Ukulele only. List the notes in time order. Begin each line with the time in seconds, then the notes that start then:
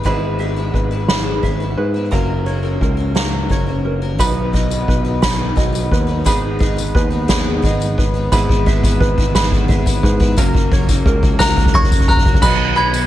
0.06 B5
0.39 E5
0.74 B4
1.08 B5
1.43 E5
1.78 B4
2.11 A#5
2.46 C#5
2.82 A#4
3.16 A#5
3.51 C#5
3.85 A#4
4.20 B5
4.54 D#5
4.88 B4
5.22 B5
5.57 D#5
5.92 B4
6.26 B5
6.60 D#5
6.94 B4
7.30 B5
7.64 D#5
7.98 B4
8.32 B5
8.67 E5
9.00 B4
9.35 B5
9.70 E5
10.04 B4
10.38 A#5
10.72 C#5
11.07 A#4
11.40 A#5
11.75 C#5
12.09 A#4